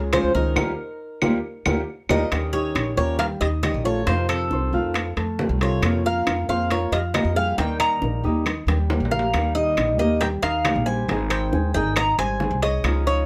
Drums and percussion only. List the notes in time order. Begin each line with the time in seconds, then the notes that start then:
0.13 high bongo, low bongo, high timbale, claves
0.35 high bongo
0.56 low bongo, high timbale, claves
1.22 low bongo, high timbale, claves
1.66 low bongo, high timbale, claves
2.09 low bongo, high timbale, claves
2.32 high bongo, high timbale, claves
2.54 high bongo
2.75 high bongo, high timbale, claves
3.19 high bongo, high timbale
3.41 high bongo, high timbale
3.63 high bongo, low bongo, high timbale, claves
3.85 high bongo
4.07 high bongo, high timbale
4.29 high timbale, claves
4.51 high bongo
4.73 high bongo
4.94 high bongo, high timbale, claves
5.17 high bongo, high timbale
5.39 high bongo, low bongo, low timbale
5.61 high bongo, high timbale
5.83 high bongo, high timbale, claves
6.05 high bongo
6.27 high bongo, high timbale, claves
6.70 high bongo, high timbale
6.92 high bongo, high timbale
7.14 high bongo, low bongo, high timbale, low timbale, claves
7.36 high bongo
7.58 high bongo, high timbale
7.80 high timbale, claves
8.02 high bongo
8.24 high bongo
8.46 high bongo, high timbale, claves
8.68 high bongo, high timbale
8.90 low bongo, high timbale
9.05 low timbale
9.12 low bongo
9.19 low timbale
9.34 high bongo, high timbale, claves
9.56 high bongo
9.77 high bongo, high timbale, claves
10.21 high bongo, high timbale
10.43 high bongo, high timbale
10.65 high bongo, low bongo, high timbale, low timbale, claves
10.87 high bongo
11.09 high bongo, high timbale
11.30 high timbale, claves
11.53 high bongo
11.75 high bongo
11.96 high bongo, high timbale, claves
12.19 high bongo, high timbale
12.40 high bongo, low bongo
12.62 high bongo, high timbale
12.84 high bongo, high timbale, claves
13.07 high bongo